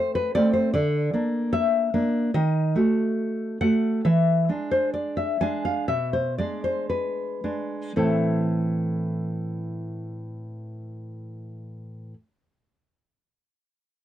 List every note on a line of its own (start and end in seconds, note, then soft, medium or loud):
0.00 0.30 A3 soft
0.00 0.30 C4 soft
0.00 0.14 C5 medium
0.15 0.34 B4 medium
0.35 0.70 A3 soft
0.35 0.70 C4 soft
0.35 0.53 D5 medium
0.53 0.73 C5 medium
0.74 1.12 D3 medium
0.74 1.49 D5 medium
1.13 1.89 A#3 soft
1.13 1.89 D4 soft
1.53 2.30 E5 medium
1.94 2.30 A#3 soft
1.94 2.30 D4 soft
2.34 2.74 D#3 medium
2.34 3.57 D#5 medium
2.76 3.57 A3 soft
2.76 3.58 F#4 soft
3.61 4.00 A3 soft
3.61 4.01 F#4 soft
3.61 4.02 F#5 medium
4.05 4.47 E3 soft
4.05 4.68 E5 medium
4.49 5.36 G#3 soft
4.49 5.36 D4 soft
4.71 4.93 C5 medium
4.94 5.16 D5 medium
5.17 5.40 E5 medium
5.41 5.85 G#3 soft
5.41 5.85 D4 soft
5.41 5.64 G#5 medium
5.65 5.88 F5 medium
5.88 6.37 B2 soft
5.88 6.13 E5 medium
6.13 6.38 C5 soft
6.38 7.40 G#3 soft
6.38 7.40 D4 soft
6.38 6.64 D5 medium
6.64 6.89 C5 soft
6.90 7.93 B4 soft
7.44 7.93 G#3 soft
7.44 7.93 D4 soft
7.96 12.13 A2 soft
7.96 12.13 E3 soft
7.96 12.13 C4 soft
7.96 12.14 E4 soft
7.96 12.13 A4 soft